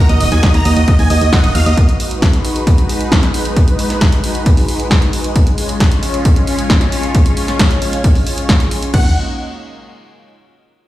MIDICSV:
0, 0, Header, 1, 5, 480
1, 0, Start_track
1, 0, Key_signature, -6, "minor"
1, 0, Tempo, 447761
1, 1902, Time_signature, 4, 2, 24, 8
1, 11662, End_track
2, 0, Start_track
2, 0, Title_t, "Supersaw synth"
2, 0, Program_c, 0, 81
2, 100, Note_on_c, 0, 75, 65
2, 197, Note_off_c, 0, 75, 0
2, 219, Note_on_c, 0, 75, 68
2, 316, Note_off_c, 0, 75, 0
2, 341, Note_on_c, 0, 80, 89
2, 437, Note_off_c, 0, 80, 0
2, 462, Note_on_c, 0, 75, 65
2, 558, Note_off_c, 0, 75, 0
2, 582, Note_on_c, 0, 82, 90
2, 678, Note_off_c, 0, 82, 0
2, 702, Note_on_c, 0, 75, 63
2, 798, Note_off_c, 0, 75, 0
2, 823, Note_on_c, 0, 75, 66
2, 918, Note_off_c, 0, 75, 0
2, 939, Note_on_c, 0, 75, 65
2, 1037, Note_off_c, 0, 75, 0
2, 1061, Note_on_c, 0, 80, 92
2, 1158, Note_off_c, 0, 80, 0
2, 1181, Note_on_c, 0, 75, 65
2, 1278, Note_off_c, 0, 75, 0
2, 1300, Note_on_c, 0, 75, 62
2, 1397, Note_off_c, 0, 75, 0
2, 1419, Note_on_c, 0, 78, 88
2, 1517, Note_off_c, 0, 78, 0
2, 1539, Note_on_c, 0, 75, 63
2, 1636, Note_off_c, 0, 75, 0
2, 1661, Note_on_c, 0, 77, 86
2, 1757, Note_off_c, 0, 77, 0
2, 1780, Note_on_c, 0, 75, 61
2, 1877, Note_off_c, 0, 75, 0
2, 9580, Note_on_c, 0, 78, 92
2, 9759, Note_off_c, 0, 78, 0
2, 11662, End_track
3, 0, Start_track
3, 0, Title_t, "Analog synth pad"
3, 0, Program_c, 1, 89
3, 0, Note_on_c, 1, 58, 81
3, 0, Note_on_c, 1, 63, 76
3, 0, Note_on_c, 1, 66, 77
3, 0, Note_on_c, 1, 75, 89
3, 1858, Note_off_c, 1, 63, 0
3, 1858, Note_off_c, 1, 75, 0
3, 1859, Note_off_c, 1, 58, 0
3, 1901, Note_on_c, 1, 71, 90
3, 1902, Note_on_c, 1, 56, 82
3, 1903, Note_on_c, 1, 63, 75
3, 5699, Note_off_c, 1, 66, 0
3, 5703, Note_off_c, 1, 71, 0
3, 5704, Note_off_c, 1, 63, 0
3, 5740, Note_on_c, 1, 61, 74
3, 5741, Note_on_c, 1, 65, 77
3, 5741, Note_on_c, 1, 73, 89
3, 9539, Note_off_c, 1, 56, 0
3, 9543, Note_off_c, 1, 61, 0
3, 9543, Note_off_c, 1, 65, 0
3, 9543, Note_off_c, 1, 73, 0
3, 9579, Note_on_c, 1, 66, 64
3, 9580, Note_on_c, 1, 58, 72
3, 9580, Note_on_c, 1, 63, 65
3, 9580, Note_on_c, 1, 75, 78
3, 9803, Note_off_c, 1, 66, 0
3, 9804, Note_off_c, 1, 58, 0
3, 9804, Note_off_c, 1, 63, 0
3, 9804, Note_off_c, 1, 75, 0
3, 11662, End_track
4, 0, Start_track
4, 0, Title_t, "FM bass"
4, 0, Program_c, 2, 39
4, 101, Note_on_c, 2, 39, 83
4, 178, Note_off_c, 2, 39, 0
4, 221, Note_on_c, 2, 27, 94
4, 298, Note_off_c, 2, 27, 0
4, 342, Note_on_c, 2, 39, 90
4, 419, Note_off_c, 2, 39, 0
4, 581, Note_on_c, 2, 39, 82
4, 658, Note_off_c, 2, 39, 0
4, 702, Note_on_c, 2, 39, 97
4, 779, Note_off_c, 2, 39, 0
4, 821, Note_on_c, 2, 39, 87
4, 899, Note_off_c, 2, 39, 0
4, 1062, Note_on_c, 2, 39, 85
4, 1139, Note_off_c, 2, 39, 0
4, 1182, Note_on_c, 2, 39, 95
4, 1259, Note_off_c, 2, 39, 0
4, 1302, Note_on_c, 2, 39, 90
4, 1379, Note_off_c, 2, 39, 0
4, 1543, Note_on_c, 2, 27, 90
4, 1619, Note_off_c, 2, 27, 0
4, 1662, Note_on_c, 2, 39, 92
4, 1739, Note_off_c, 2, 39, 0
4, 1783, Note_on_c, 2, 39, 87
4, 1859, Note_off_c, 2, 39, 0
4, 9582, Note_on_c, 2, 39, 94
4, 9805, Note_off_c, 2, 39, 0
4, 11662, End_track
5, 0, Start_track
5, 0, Title_t, "Drums"
5, 101, Note_on_c, 9, 42, 47
5, 208, Note_off_c, 9, 42, 0
5, 220, Note_on_c, 9, 46, 111
5, 328, Note_off_c, 9, 46, 0
5, 341, Note_on_c, 9, 38, 36
5, 341, Note_on_c, 9, 42, 49
5, 449, Note_off_c, 9, 38, 0
5, 449, Note_off_c, 9, 42, 0
5, 461, Note_on_c, 9, 38, 116
5, 461, Note_on_c, 9, 42, 74
5, 462, Note_on_c, 9, 36, 114
5, 568, Note_off_c, 9, 38, 0
5, 568, Note_off_c, 9, 42, 0
5, 569, Note_off_c, 9, 36, 0
5, 581, Note_on_c, 9, 42, 48
5, 688, Note_off_c, 9, 42, 0
5, 700, Note_on_c, 9, 46, 108
5, 807, Note_off_c, 9, 46, 0
5, 821, Note_on_c, 9, 42, 50
5, 928, Note_off_c, 9, 42, 0
5, 941, Note_on_c, 9, 42, 71
5, 942, Note_on_c, 9, 36, 119
5, 1048, Note_off_c, 9, 42, 0
5, 1049, Note_off_c, 9, 36, 0
5, 1061, Note_on_c, 9, 46, 60
5, 1168, Note_off_c, 9, 46, 0
5, 1181, Note_on_c, 9, 46, 105
5, 1289, Note_off_c, 9, 46, 0
5, 1302, Note_on_c, 9, 42, 50
5, 1409, Note_off_c, 9, 42, 0
5, 1422, Note_on_c, 9, 36, 119
5, 1422, Note_on_c, 9, 38, 115
5, 1422, Note_on_c, 9, 42, 49
5, 1529, Note_off_c, 9, 36, 0
5, 1530, Note_off_c, 9, 38, 0
5, 1530, Note_off_c, 9, 42, 0
5, 1543, Note_on_c, 9, 42, 48
5, 1650, Note_off_c, 9, 42, 0
5, 1662, Note_on_c, 9, 46, 112
5, 1770, Note_off_c, 9, 46, 0
5, 1783, Note_on_c, 9, 42, 50
5, 1890, Note_off_c, 9, 42, 0
5, 1902, Note_on_c, 9, 36, 114
5, 1902, Note_on_c, 9, 42, 74
5, 2009, Note_off_c, 9, 36, 0
5, 2010, Note_off_c, 9, 42, 0
5, 2023, Note_on_c, 9, 42, 48
5, 2130, Note_off_c, 9, 42, 0
5, 2143, Note_on_c, 9, 46, 106
5, 2250, Note_off_c, 9, 46, 0
5, 2263, Note_on_c, 9, 42, 48
5, 2370, Note_off_c, 9, 42, 0
5, 2382, Note_on_c, 9, 36, 113
5, 2383, Note_on_c, 9, 38, 108
5, 2383, Note_on_c, 9, 42, 74
5, 2489, Note_off_c, 9, 36, 0
5, 2490, Note_off_c, 9, 38, 0
5, 2490, Note_off_c, 9, 42, 0
5, 2503, Note_on_c, 9, 42, 50
5, 2610, Note_off_c, 9, 42, 0
5, 2622, Note_on_c, 9, 46, 102
5, 2729, Note_off_c, 9, 46, 0
5, 2742, Note_on_c, 9, 42, 50
5, 2850, Note_off_c, 9, 42, 0
5, 2862, Note_on_c, 9, 36, 115
5, 2863, Note_on_c, 9, 42, 74
5, 2969, Note_off_c, 9, 36, 0
5, 2970, Note_off_c, 9, 42, 0
5, 2982, Note_on_c, 9, 42, 47
5, 3090, Note_off_c, 9, 42, 0
5, 3103, Note_on_c, 9, 46, 99
5, 3210, Note_off_c, 9, 46, 0
5, 3222, Note_on_c, 9, 42, 52
5, 3329, Note_off_c, 9, 42, 0
5, 3342, Note_on_c, 9, 36, 113
5, 3343, Note_on_c, 9, 38, 113
5, 3343, Note_on_c, 9, 42, 49
5, 3449, Note_off_c, 9, 36, 0
5, 3450, Note_off_c, 9, 38, 0
5, 3450, Note_off_c, 9, 42, 0
5, 3463, Note_on_c, 9, 38, 35
5, 3463, Note_on_c, 9, 42, 50
5, 3570, Note_off_c, 9, 38, 0
5, 3570, Note_off_c, 9, 42, 0
5, 3583, Note_on_c, 9, 46, 107
5, 3690, Note_off_c, 9, 46, 0
5, 3703, Note_on_c, 9, 42, 48
5, 3810, Note_off_c, 9, 42, 0
5, 3822, Note_on_c, 9, 36, 111
5, 3822, Note_on_c, 9, 42, 75
5, 3929, Note_off_c, 9, 36, 0
5, 3929, Note_off_c, 9, 42, 0
5, 3942, Note_on_c, 9, 42, 49
5, 4049, Note_off_c, 9, 42, 0
5, 4062, Note_on_c, 9, 46, 102
5, 4169, Note_off_c, 9, 46, 0
5, 4182, Note_on_c, 9, 38, 33
5, 4182, Note_on_c, 9, 42, 50
5, 4290, Note_off_c, 9, 38, 0
5, 4290, Note_off_c, 9, 42, 0
5, 4301, Note_on_c, 9, 38, 112
5, 4301, Note_on_c, 9, 42, 77
5, 4302, Note_on_c, 9, 36, 104
5, 4408, Note_off_c, 9, 38, 0
5, 4408, Note_off_c, 9, 42, 0
5, 4409, Note_off_c, 9, 36, 0
5, 4422, Note_on_c, 9, 42, 50
5, 4529, Note_off_c, 9, 42, 0
5, 4542, Note_on_c, 9, 46, 101
5, 4649, Note_off_c, 9, 46, 0
5, 4663, Note_on_c, 9, 42, 50
5, 4770, Note_off_c, 9, 42, 0
5, 4782, Note_on_c, 9, 36, 112
5, 4782, Note_on_c, 9, 42, 75
5, 4889, Note_off_c, 9, 36, 0
5, 4889, Note_off_c, 9, 42, 0
5, 4902, Note_on_c, 9, 46, 59
5, 5009, Note_off_c, 9, 46, 0
5, 5022, Note_on_c, 9, 46, 97
5, 5130, Note_off_c, 9, 46, 0
5, 5142, Note_on_c, 9, 42, 53
5, 5249, Note_off_c, 9, 42, 0
5, 5262, Note_on_c, 9, 36, 115
5, 5262, Note_on_c, 9, 38, 112
5, 5262, Note_on_c, 9, 42, 53
5, 5369, Note_off_c, 9, 36, 0
5, 5369, Note_off_c, 9, 38, 0
5, 5369, Note_off_c, 9, 42, 0
5, 5381, Note_on_c, 9, 42, 50
5, 5489, Note_off_c, 9, 42, 0
5, 5501, Note_on_c, 9, 46, 98
5, 5608, Note_off_c, 9, 46, 0
5, 5621, Note_on_c, 9, 42, 51
5, 5729, Note_off_c, 9, 42, 0
5, 5742, Note_on_c, 9, 36, 107
5, 5742, Note_on_c, 9, 42, 78
5, 5849, Note_off_c, 9, 36, 0
5, 5849, Note_off_c, 9, 42, 0
5, 5861, Note_on_c, 9, 42, 52
5, 5968, Note_off_c, 9, 42, 0
5, 5981, Note_on_c, 9, 46, 98
5, 6088, Note_off_c, 9, 46, 0
5, 6102, Note_on_c, 9, 42, 51
5, 6209, Note_off_c, 9, 42, 0
5, 6222, Note_on_c, 9, 36, 106
5, 6222, Note_on_c, 9, 38, 110
5, 6222, Note_on_c, 9, 42, 83
5, 6329, Note_off_c, 9, 36, 0
5, 6329, Note_off_c, 9, 38, 0
5, 6329, Note_off_c, 9, 42, 0
5, 6342, Note_on_c, 9, 42, 55
5, 6449, Note_off_c, 9, 42, 0
5, 6461, Note_on_c, 9, 46, 98
5, 6568, Note_off_c, 9, 46, 0
5, 6582, Note_on_c, 9, 42, 54
5, 6689, Note_off_c, 9, 42, 0
5, 6701, Note_on_c, 9, 42, 79
5, 6702, Note_on_c, 9, 36, 111
5, 6809, Note_off_c, 9, 36, 0
5, 6809, Note_off_c, 9, 42, 0
5, 6821, Note_on_c, 9, 42, 52
5, 6928, Note_off_c, 9, 42, 0
5, 6940, Note_on_c, 9, 46, 92
5, 7047, Note_off_c, 9, 46, 0
5, 7060, Note_on_c, 9, 42, 53
5, 7167, Note_off_c, 9, 42, 0
5, 7180, Note_on_c, 9, 38, 115
5, 7180, Note_on_c, 9, 42, 52
5, 7182, Note_on_c, 9, 36, 113
5, 7288, Note_off_c, 9, 38, 0
5, 7288, Note_off_c, 9, 42, 0
5, 7289, Note_off_c, 9, 36, 0
5, 7301, Note_on_c, 9, 38, 35
5, 7301, Note_on_c, 9, 42, 52
5, 7408, Note_off_c, 9, 38, 0
5, 7408, Note_off_c, 9, 42, 0
5, 7421, Note_on_c, 9, 46, 99
5, 7528, Note_off_c, 9, 46, 0
5, 7541, Note_on_c, 9, 42, 53
5, 7648, Note_off_c, 9, 42, 0
5, 7661, Note_on_c, 9, 42, 80
5, 7662, Note_on_c, 9, 36, 111
5, 7768, Note_off_c, 9, 42, 0
5, 7769, Note_off_c, 9, 36, 0
5, 7781, Note_on_c, 9, 42, 53
5, 7888, Note_off_c, 9, 42, 0
5, 7900, Note_on_c, 9, 46, 99
5, 8007, Note_off_c, 9, 46, 0
5, 8021, Note_on_c, 9, 38, 37
5, 8021, Note_on_c, 9, 42, 52
5, 8129, Note_off_c, 9, 38, 0
5, 8129, Note_off_c, 9, 42, 0
5, 8141, Note_on_c, 9, 38, 120
5, 8141, Note_on_c, 9, 42, 82
5, 8142, Note_on_c, 9, 36, 109
5, 8249, Note_off_c, 9, 36, 0
5, 8249, Note_off_c, 9, 38, 0
5, 8249, Note_off_c, 9, 42, 0
5, 8262, Note_on_c, 9, 42, 53
5, 8369, Note_off_c, 9, 42, 0
5, 8381, Note_on_c, 9, 46, 96
5, 8488, Note_off_c, 9, 46, 0
5, 8501, Note_on_c, 9, 42, 55
5, 8609, Note_off_c, 9, 42, 0
5, 8621, Note_on_c, 9, 42, 80
5, 8622, Note_on_c, 9, 36, 114
5, 8728, Note_off_c, 9, 42, 0
5, 8729, Note_off_c, 9, 36, 0
5, 8741, Note_on_c, 9, 46, 56
5, 8848, Note_off_c, 9, 46, 0
5, 8861, Note_on_c, 9, 46, 98
5, 8968, Note_off_c, 9, 46, 0
5, 8980, Note_on_c, 9, 42, 55
5, 9088, Note_off_c, 9, 42, 0
5, 9101, Note_on_c, 9, 38, 117
5, 9101, Note_on_c, 9, 42, 53
5, 9102, Note_on_c, 9, 36, 113
5, 9208, Note_off_c, 9, 38, 0
5, 9208, Note_off_c, 9, 42, 0
5, 9209, Note_off_c, 9, 36, 0
5, 9221, Note_on_c, 9, 42, 53
5, 9328, Note_off_c, 9, 42, 0
5, 9341, Note_on_c, 9, 46, 101
5, 9448, Note_off_c, 9, 46, 0
5, 9461, Note_on_c, 9, 42, 53
5, 9568, Note_off_c, 9, 42, 0
5, 9581, Note_on_c, 9, 49, 82
5, 9582, Note_on_c, 9, 36, 110
5, 9688, Note_off_c, 9, 49, 0
5, 9689, Note_off_c, 9, 36, 0
5, 11662, End_track
0, 0, End_of_file